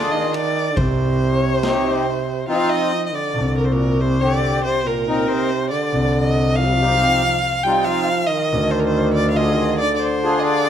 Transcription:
Already playing: trombone D3, accordion D4 F4 G#4, violin D5
0.11 trombone D#3, violin D#5
0.34 violin D5, ride
0.76 double bass C2, trombone C3, violin C5, kick, ride
1.37 violin C#5
1.54 violin C5
1.63 accordion C4 D#4 G4, snare, ride
1.72 violin C#5
1.88 violin C5
2.48 trombone F3, accordion C4 D#4 F4, violin F5
2.70 violin D#5
3.06 violin D#5
3.13 trombone D3, violin D5
3.34 double bass C2
3.58 violin A#4
3.65 violin C5
3.71 trombone A#2, violin A#4
4.00 trombone C3, violin C5
4.21 trombone D3, accordion C4 G4, violin D5
4.63 trombone C3, violin C5
4.86 trombone A#2, violin A#4
5.08 accordion C4 D#4 A#4
5.28 trombone C3, violin C5
5.71 trombone D3, violin D5
5.93 double bass C2
6.12 violin D5
6.23 violin D#5
6.56 trombone F3, violin F5
6.67 trombone G3
6.75 trombone F3
6.79 trombone G3, accordion C4 D#4 G4
6.90 trombone F3
6.98 trombone G3
7.06 trombone F3
7.64 trombone G3, accordion C4 D#4 F4, violin G5
7.85 trombone F3, violin F5
8.27 trombone D#3, violin D#5
8.52 double bass D2
8.71 violin C5
8.80 violin A#4
8.84 violin C5
9.14 violin D5
9.30 violin F5
9.36 accordion D3 F4 G#4, trombone D#3, violin D#5
9.45 trombone D3
9.53 trombone D#3
9.79 trombone D3, violin D5
9.96 violin C5 D5
10.23 accordion D4 F4 G#4
10.39 violin D5 D#5

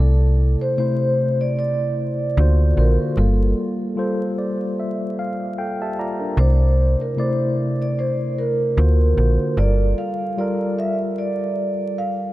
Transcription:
Already playing: fm bass C2, tine electric piano C3 A3
0.00 tine electric piano E4 D5, vibraphone A4
0.61 vibraphone C5
0.77 tine electric piano C3 A3 E4 C5, vibraphone C5
1.41 vibraphone D5
1.59 vibraphone D5
2.37 fm bass D2, tine electric piano D3 A#3 F4 F#4 C5
2.76 fm bass A#1, tine electric piano D3 A#3 F4 F#4 C5, vibraphone A#4
3.16 fm bass G1, tine electric piano G3 A#3 F4 A4, vibraphone A4
3.96 tine electric piano G3 F4 A4 C5
4.38 tine electric piano D5
4.80 tine electric piano E5
5.19 tine electric piano F5
5.58 tine electric piano A4 F5 G5
5.82 tine electric piano G4 E5 A5
5.99 tine electric piano F4 D5 A#5
6.20 tine electric piano D4 A#4
6.37 fm bass C2, tine electric piano C3 A3 E4 D5, vibraphone C5
7.01 vibraphone A#4
7.16 tine electric piano C3 A3 E4 D5, vibraphone C5
7.82 vibraphone D5
7.99 vibraphone C5
8.39 vibraphone A#4
8.77 fm bass D2, tine electric piano D3 A#3 F4 F#4 C5
9.17 fm bass A#1, tine electric piano D3 A#3 F4 F#4 C5
9.57 fm bass G1, tine electric piano G3 F4 A4 A#4, vibraphone D5
9.98 vibraphone F5
10.37 tine electric piano G3 F4 A4 A#4, vibraphone D5
10.79 vibraphone E5
11.18 vibraphone D5
11.98 vibraphone F5

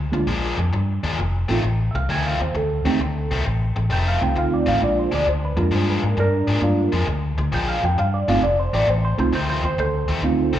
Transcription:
0.12 fingered electric bass D2, reed electric piano G#3 A#3 D4 F4, muted overdriven electric guitar stroke
0.27 fingered electric bass A#1, overdriven electric guitar A#2 F3 G#3 D4
0.58 fingered electric bass F2, muted overdriven electric guitar stroke
0.72 fingered electric bass G2, muted overdriven electric guitar stroke
1.03 fingered electric bass D#2, overdriven electric guitar A#2 F3 G#3 D4
1.18 fingered electric bass F1, muted overdriven electric guitar stroke
1.49 fingered electric bass A1, overdriven electric guitar F2 D#3 A3 C4, reed electric piano A3 C4 D#4 F4
1.63 fingered electric bass A1, muted overdriven electric guitar stroke
1.91 fingered electric bass C2, reed electric piano E5
1.95 reed electric piano F5, muted overdriven electric guitar stroke
2.09 fingered electric bass D2, overdriven electric guitar F2 D#3 A3 C4, reed electric piano G#5
2.26 reed electric piano F5
2.40 fingered electric bass D#2, reed electric piano C5, muted overdriven electric guitar stroke
2.54 fingered electric bass D2, reed electric piano A4, muted overdriven electric guitar stroke
2.85 fingered electric bass D#2, overdriven electric guitar F2 D#3 A3 C4, reed electric piano A3 C4 D#4 G4
3.00 fingered electric bass D2, muted overdriven electric guitar stroke
3.31 fingered electric bass C2, overdriven electric guitar F2 D#3 A3 C4
3.45 fingered electric bass A1, muted overdriven electric guitar stroke
3.76 fingered electric bass A1, muted overdriven electric guitar stroke
3.90 fingered electric bass F1, overdriven electric guitar F2 D#3 A3 C4, reed electric piano G5
4.08 reed electric piano F5
4.21 fingered electric bass C2, reed electric piano A3 C4 D#4 F4 G5, muted overdriven electric guitar stroke
4.36 fingered electric bass D2, reed electric piano F5, muted overdriven electric guitar stroke
4.54 reed electric piano D5
4.66 fingered electric bass A1, overdriven electric guitar F2 D#3 A3 C4, reed electric piano F5
4.81 fingered electric bass A#1, reed electric piano G#3 A#3 D4 F4 D5, muted overdriven electric guitar stroke
4.99 reed electric piano C5
5.12 fingered electric bass D2, overdriven electric guitar A#2 F3 G#3 D4, reed electric piano D5
5.27 fingered electric bass D2, reed electric piano C5, muted overdriven electric guitar stroke
5.45 reed electric piano B4
5.56 fingered electric bass F2, reed electric piano G#3 A#3 D4 F4 A#4, muted overdriven electric guitar stroke
5.71 fingered electric bass G2, overdriven electric guitar A#2 F3 G#3 D4, reed electric piano C5
5.90 reed electric piano B4
6.02 fingered electric bass G#2, reed electric piano A#4, muted overdriven electric guitar stroke
6.17 fingered electric bass G2, reed electric piano D4 A#4, muted overdriven electric guitar stroke
6.47 fingered electric bass G#2, overdriven electric guitar A#2 F3 G#3 D4
6.61 fingered electric bass G2, reed electric piano G#3 A#3 D4 F4, muted overdriven electric guitar stroke
6.92 fingered electric bass F2, overdriven electric guitar A#2 F3 G#3 D4
7.07 fingered electric bass D2, muted overdriven electric guitar stroke
7.38 fingered electric bass D2, muted overdriven electric guitar stroke
7.52 fingered electric bass A#1, overdriven electric guitar A#2 F3 G#3 D4, reed electric piano G5
7.69 reed electric piano F5
7.83 fingered electric bass F2, reed electric piano G5, muted overdriven electric guitar stroke
7.98 fingered electric bass G2, reed electric piano F5, muted overdriven electric guitar stroke
8.14 reed electric piano D5
8.28 fingered electric bass G1, overdriven electric guitar A#2 F3 G#3 D4, reed electric piano A3 C4 D#4 F4 F5
8.42 fingered electric bass F1, reed electric piano D5, muted overdriven electric guitar stroke
8.60 reed electric piano C5
8.73 fingered electric bass A1, overdriven electric guitar F2 D#3 A3 C4, reed electric piano D5
8.88 fingered electric bass A1, reed electric piano C5, muted overdriven electric guitar stroke
9.05 reed electric piano C5
9.18 fingered electric bass C2, reed electric piano A3 C4 D#4 F4 C5, muted overdriven electric guitar stroke
9.32 fingered electric bass D2, overdriven electric guitar F2 D#3 A3 C4, reed electric piano C5
9.50 reed electric piano C5
9.63 fingered electric bass D#2, reed electric piano C5, muted overdriven electric guitar stroke
9.78 fingered electric bass D2, reed electric piano A4 C5, muted overdriven electric guitar stroke
10.08 fingered electric bass D#2, overdriven electric guitar F2 D#3 A3 C4
10.23 fingered electric bass D2, reed electric piano A3 C4 D#4 F4, muted overdriven electric guitar stroke
10.53 fingered electric bass C2, overdriven electric guitar F2 D#3 A3 C4

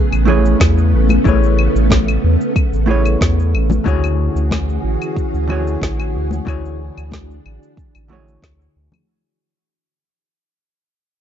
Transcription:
Already playing: string machine C#3 A3 B3 G#4, hollow-body jazz guitar A3 E4 G#4 B4 C#5
0.13 analog synth bass A1, cabasa, claves
0.25 hollow-body jazz guitar A3 E4 G#4 B4, high conga, low conga
0.29 hollow-body jazz guitar C#5
0.46 cabasa
0.60 analog synth bass E2, kick, snare, cabasa, claves
0.78 cabasa
0.94 analog synth bass A1
1.09 high conga, cabasa, claves
1.24 analog synth bass A1, hollow-body jazz guitar A3 E4 G#4 B4, kick, cabasa
1.29 hollow-body jazz guitar C#5
1.43 cabasa
1.59 claves
1.76 analog synth bass A1, cabasa
1.90 kick, snare, high conga, cabasa
2.08 cabasa, claves
2.24 analog synth bass E2
2.41 cabasa
2.56 kick, cabasa, claves
2.73 analog synth bass A1, cabasa
2.86 hollow-body jazz guitar A3 E4 G#4 B4, high conga
2.91 hollow-body jazz guitar C#5
3.06 cabasa, claves
3.21 analog synth bass E2, kick, snare, cabasa
3.40 cabasa
3.54 analog synth bass A1, claves
3.70 high conga, low conga, cabasa
3.84 analog synth bass D2, hollow-body jazz guitar D3 A3 E4 F#4 G#4 C#5, string machine E3 C#4 F#4 G#4, kick, cabasa
4.04 cabasa, claves
4.36 analog synth bass D2, cabasa
4.51 kick, snare, high conga, cabasa, claves
4.69 cabasa
4.84 analog synth bass A1
5.02 cabasa, claves
5.16 kick, cabasa
5.34 analog synth bass D2, cabasa
5.47 hollow-body jazz guitar D3 A3 E4 F#4 G#4, high conga, low conga, claves
5.52 hollow-body jazz guitar C#5
5.67 cabasa
5.82 analog synth bass A1, kick, snare, cabasa
6.00 cabasa, claves
6.15 analog synth bass D2
6.31 high conga, cabasa
6.45 analog synth bass D2, hollow-body jazz guitar D3 A3 E4 F#4 G#4, string machine D4, kick, cabasa, claves
6.49 hollow-body jazz guitar C#5
6.66 cabasa
6.98 analog synth bass D2, cabasa, claves
7.11 kick, snare, high conga, cabasa
7.31 cabasa
7.46 analog synth bass A1, claves
7.63 cabasa
7.77 kick, cabasa
7.95 analog synth bass A1, cabasa, claves
8.08 hollow-body jazz guitar D3 A3 E4 F#4 G#4, high conga, low conga
8.13 hollow-body jazz guitar C#5
8.28 cabasa
8.42 analog synth bass D2, kick, snare, cabasa, claves
8.61 cabasa
8.76 analog synth bass D2
8.92 high conga, low conga, cabasa, claves

